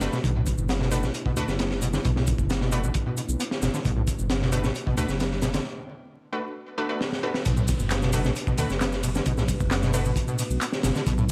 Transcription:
Already playing: analog synth pad A3 B3 D4 F#4 B4
0.01 detuned saw bass F#1, synth stab A3 D4 F#4 B4, acid bass A3, snare, closed hi-hat, shaker
0.13 acid bass B2, snare, shaker
0.24 detuned saw bass B1, acid bass B2, analog synth pad E4, kick, closed hi-hat, shaker
0.36 acid bass A2
0.46 kick, closed hi-hat, shaker
0.58 detuned saw bass F#1, shaker
0.69 acid bass B3, snare, closed hi-hat, shaker
0.80 acid bass B2, snare
0.91 acid bass B2, synth stab A3 D4 F#4 B4, closed hi-hat, shaker
1.03 detuned saw bass A1, acid bass B2, snare, shaker
1.14 closed hi-hat, shaker
1.26 acid bass B2, kick
1.37 detuned saw bass D2, acid bass B2, synth stab A3 D4 F#4 B4, closed hi-hat, shaker
1.48 detuned saw bass F#1, snare, shaker
1.59 acid bass B3, snare, closed hi-hat, shaker
1.71 snare
1.82 acid bass B2, closed hi-hat, shaker
1.93 acid bass D3, snare, shaker
2.05 detuned saw bass B1, acid bass B2, kick, closed hi-hat, shaker
2.16 acid bass A2, snare
2.27 kick, closed hi-hat, shaker
2.38 detuned saw bass F#1, kick, shaker
2.50 acid bass B3, snare, closed hi-hat, shaker
2.61 acid bass B2, snare
2.72 acid bass B2, synth stab A3 D4 F#4 B4, closed hi-hat, shaker
2.84 detuned saw bass A1, acid bass B2, shaker
2.94 kick, closed hi-hat, shaker
3.06 acid bass B2
3.17 acid bass B2, closed hi-hat, shaker
3.29 detuned saw bass B1, shaker
3.40 acid bass B3, closed hi-hat, shaker
3.51 snare
3.62 detuned saw bass F#1, acid bass B2, snare, closed hi-hat, shaker
3.74 acid bass D3, snare, shaker
3.85 detuned saw bass B1, acid bass B2, kick, closed hi-hat, shaker
3.96 acid bass A2
4.07 kick, closed hi-hat, shaker
4.19 detuned saw bass F#1, shaker
4.30 acid bass B3, snare, closed hi-hat, shaker
4.41 acid bass B2, snare
4.52 acid bass B2, synth stab A3 D4 F#4 B4, closed hi-hat, shaker
4.64 detuned saw bass A1, acid bass B2, snare, shaker
4.75 closed hi-hat, shaker
4.86 acid bass B2, kick
4.97 detuned saw bass D2, acid bass B2, synth stab A3 D4 F#4 B4, closed hi-hat, shaker
5.09 detuned saw bass F#1, snare, shaker
5.20 acid bass B3, snare, closed hi-hat, shaker
5.31 snare
5.42 acid bass B2, snare, closed hi-hat, shaker
5.54 acid bass D3, snare, closed hi-hat, shaker
6.32 synth stab A3 D4 F#4 B4
6.55 swell
6.78 synth stab A3 D4 F#4 B4
6.89 synth stab A3 D4 F#4 B4
7.01 snare
7.13 snare
7.23 synth stab A3 D4 F#4 B4
7.34 snare
7.45 detuned saw bass B1, acid bass B2, analog synth pad A3 B3 D4 F#4 B4, kick, closed hi-hat, downlifter, shaker
7.57 acid bass A2, shaker
7.68 kick, closed hi-hat, ride, shaker
7.79 detuned saw bass F#1, shaker
7.91 acid bass B3, snare, clap, closed hi-hat, shaker
8.02 acid bass B2, snare, shaker
8.13 acid bass B2, synth stab A3 D4 F#4 B4, closed hi-hat, ride, shaker
8.25 detuned saw bass A1, acid bass B2, snare, shaker
8.36 closed hi-hat, shaker
8.47 acid bass B2, kick, shaker
8.58 detuned saw bass D2, acid bass B2, synth stab A3 D4 F#4 B4, closed hi-hat, ride, shaker
8.70 detuned saw bass F#1, snare, shaker
8.81 acid bass B3, snare, clap, closed hi-hat, shaker
8.92 snare, shaker
9.03 acid bass B2, closed hi-hat, ride, shaker
9.15 acid bass D3, snare, shaker
9.26 detuned saw bass B1, acid bass B2, kick, closed hi-hat, shaker
9.37 acid bass A2, snare, shaker
9.48 kick, closed hi-hat, ride, shaker
9.60 detuned saw bass F#1, kick, shaker
9.71 acid bass B3, snare, clap, closed hi-hat, shaker
9.83 acid bass B2, snare, shaker
9.94 acid bass B2, synth stab A3 D4 F#4 B4, closed hi-hat, ride, shaker
10.05 detuned saw bass A1, acid bass B2, shaker
10.16 kick, closed hi-hat, shaker
10.28 acid bass B2, shaker
10.39 acid bass B2, closed hi-hat, ride, shaker
10.50 detuned saw bass B1, shaker
10.61 acid bass B3, clap, closed hi-hat, shaker
10.72 snare, shaker
10.83 detuned saw bass F#1, acid bass B2, snare, closed hi-hat, ride, shaker
10.95 acid bass D3, snare, shaker
11.06 detuned saw bass B1, acid bass B2, analog synth pad A4, kick, closed hi-hat, shaker
11.18 acid bass A2, shaker

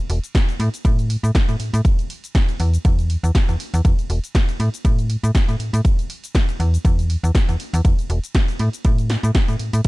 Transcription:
0.10 fm bass E1, open hi-hat
0.24 closed hi-hat, cabasa
0.35 kick, snare, closed hi-hat, ride, cabasa
0.49 closed hi-hat, cabasa
0.60 fm bass A2, open hi-hat
0.74 closed hi-hat, cabasa
0.85 fm bass A2, kick, closed hi-hat, ride, cabasa
0.99 closed hi-hat, cabasa
1.10 open hi-hat
1.23 fm bass A2, closed hi-hat, cabasa
1.35 kick, snare, closed hi-hat, ride, cabasa
1.49 fm bass A2, closed hi-hat, cabasa
1.60 fm bass A2, open hi-hat
1.74 fm bass A2, open hi-hat, cabasa
1.85 kick, closed hi-hat, ride, cabasa
1.99 closed hi-hat, cabasa
2.10 open hi-hat
2.24 closed hi-hat, cabasa
2.35 kick, snare, closed hi-hat, ride, cabasa
2.49 closed hi-hat, cabasa
2.60 fm bass E2, open hi-hat
2.74 closed hi-hat, cabasa
2.85 fm bass E2, kick, closed hi-hat, ride, cabasa
2.99 closed hi-hat, cabasa
3.10 open hi-hat
3.23 fm bass E2, closed hi-hat, cabasa
3.35 kick, snare, closed hi-hat, ride, cabasa
3.49 fm bass E2, closed hi-hat, cabasa
3.60 open hi-hat
3.74 fm bass E2, open hi-hat, cabasa
3.85 fm bass E2, kick, closed hi-hat, ride, cabasa
3.99 closed hi-hat, cabasa
4.10 fm bass E1, open hi-hat
4.24 closed hi-hat, cabasa
4.35 kick, snare, closed hi-hat, ride, cabasa
4.49 closed hi-hat, cabasa
4.60 fm bass A2, open hi-hat
4.74 closed hi-hat, cabasa
4.85 fm bass A2, kick, closed hi-hat, ride, cabasa
4.99 closed hi-hat, cabasa
5.10 open hi-hat
5.23 fm bass A2, closed hi-hat, cabasa
5.35 kick, snare, closed hi-hat, ride, cabasa
5.48 fm bass A2, closed hi-hat, cabasa
5.60 fm bass A2, open hi-hat
5.73 fm bass A2, open hi-hat, cabasa
5.85 kick, closed hi-hat, ride, cabasa
5.99 closed hi-hat, cabasa
6.10 open hi-hat
6.24 closed hi-hat, cabasa
6.35 kick, snare, closed hi-hat, ride, cabasa
6.49 closed hi-hat, cabasa
6.60 fm bass E2, open hi-hat
6.74 closed hi-hat, cabasa
6.85 fm bass E2, kick, closed hi-hat, ride, cabasa
6.99 closed hi-hat, cabasa
7.10 open hi-hat
7.24 fm bass E2, closed hi-hat, cabasa
7.35 kick, snare, closed hi-hat, ride, cabasa
7.48 fm bass E2, closed hi-hat, cabasa
7.60 open hi-hat
7.73 fm bass E2, open hi-hat, cabasa
7.85 kick, closed hi-hat, ride, cabasa
7.99 closed hi-hat, cabasa
8.10 fm bass E1, open hi-hat
8.24 closed hi-hat, cabasa
8.35 kick, snare, closed hi-hat, ride, cabasa
8.48 closed hi-hat, cabasa
8.59 fm bass A2, open hi-hat
8.73 closed hi-hat, cabasa
8.85 fm bass A2, kick, closed hi-hat, ride, cabasa
8.98 closed hi-hat, cabasa
9.10 snare, open hi-hat
9.23 fm bass A2, closed hi-hat, cabasa
9.35 kick, snare, closed hi-hat, ride, cabasa
9.48 fm bass A2, closed hi-hat, cabasa
9.59 fm bass A2, open hi-hat
9.73 fm bass A2, open hi-hat, cabasa
9.84 kick, closed hi-hat, ride

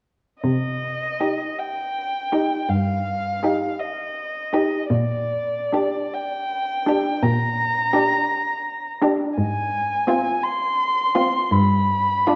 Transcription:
0.43 cello C3, violin D#5
1.20 viola D#4, violin G4
1.58 violin G5
2.32 viola D#4, violin G4
2.69 cello G2, violin F5
3.43 viola D#4, violin G4
3.79 violin D#5
4.53 viola D#4, violin G4
4.91 cello A#2, violin D5
5.73 viola D4, violin G4
6.13 violin G5
6.87 viola D4, violin G4
7.23 cello A#2, violin A#5
7.94 viola D4, violin G4
9.02 viola D4, violin G4
9.38 cello G#2, violin G#5
10.07 viola C4, violin F4
10.42 violin C6
11.15 viola C4, violin F4
11.52 cello G2, violin B5
12.27 viola D4, violin F4

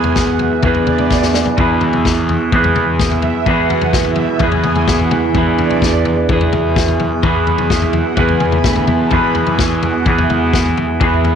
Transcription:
Already playing: picked electric bass E2, clean electric guitar E3 B3 E4 G#4 B4, string machine G#5
0.04 floor tom
0.16 string machine F#5, kick, snare
0.27 floor tom
0.39 string machine E5, floor tom
0.63 picked electric bass E2, clean electric guitar E3 B3 E4 G#4, kick, floor tom, mid tom
0.67 clean electric guitar B4, string machine D5
0.75 floor tom
0.87 floor tom, mid tom
0.98 mid tom
1.11 kick, snare
1.23 snare
1.34 snare
1.46 floor tom
1.57 picked electric bass E2, tanpura B2, clean electric guitar E3 B3 E4 G#4 B4, kick, floor tom
1.81 floor tom
1.93 floor tom
2.05 kick, snare
2.20 tanpura E3
2.29 floor tom
2.52 picked electric bass E2, clean electric guitar E3 B3 E4 G#4 B4, kick, floor tom
2.64 floor tom
2.76 floor tom, mid tom
2.83 tanpura E3
2.99 string machine E5, kick, snare
3.11 floor tom
3.22 floor tom
3.45 tanpura E2, picked electric bass E2, clean electric guitar E3 B3 E4, string machine F#5, kick, floor tom
3.49 clean electric guitar G#4 B4
3.70 floor tom
3.82 floor tom
3.93 string machine E5, kick, snare
4.05 tanpura B2, floor tom
4.16 floor tom
4.39 picked electric bass E2, clean electric guitar E3 B3 E4 G#4, string machine G#5, kick, floor tom, mid tom
4.44 clean electric guitar B4
4.52 floor tom
4.64 floor tom, mid tom
4.68 tanpura E3
4.76 mid tom
4.88 string machine F#5, kick, snare
4.99 floor tom
5.11 string machine E5, floor tom, mid tom
5.29 tanpura E3
5.35 picked electric bass E2, clean electric guitar E3 B3 E4 G#4 B4, string machine D5, kick, floor tom
5.59 floor tom
5.70 floor tom
5.82 kick, snare
5.91 tanpura E2
6.05 floor tom
6.29 picked electric bass E2, clean electric guitar E3 B3 E4 G#4, kick, floor tom
6.33 clean electric guitar B4
6.41 floor tom
6.53 tanpura B2, floor tom, mid tom
6.76 kick, snare
6.88 floor tom
7.00 floor tom
7.16 tanpura E3
7.23 picked electric bass E2, clean electric guitar E3 B3 E4 G#4 B4, kick, floor tom
7.47 floor tom
7.58 floor tom
7.70 string machine E5, kick, snare
7.76 tanpura E3
7.82 floor tom
7.93 string machine F#5, floor tom
8.16 picked electric bass E2, clean electric guitar E3 B3 E4 G#4 B4, string machine G#5, kick, floor tom, mid tom
8.29 floor tom
8.38 tanpura E2, string machine B5, floor tom, mid tom
8.52 mid tom
8.64 picked electric bass D2, kick, snare
8.76 floor tom
8.87 picked electric bass E2, string machine A5, floor tom, mid tom
9.00 tanpura B2
9.11 picked electric bass E2, clean electric guitar E3 B3 E4 G#4, string machine B5, kick, floor tom
9.15 clean electric guitar B4
9.35 string machine G#5, floor tom
9.47 floor tom
9.59 tanpura E3, kick, snare
9.82 string machine F#5, floor tom
10.06 picked electric bass E2, clean electric guitar E3 B3 E4 G#4 B4, string machine E5, kick, floor tom
10.18 floor tom
10.24 tanpura E3
10.30 string machine F#5, floor tom, mid tom
10.53 kick, snare
10.66 floor tom
10.77 floor tom
10.87 tanpura E2
11.00 picked electric bass E2, clean electric guitar E3 B3 E4 G#4 B4, string machine E5, kick, floor tom
11.25 string machine F#5, floor tom

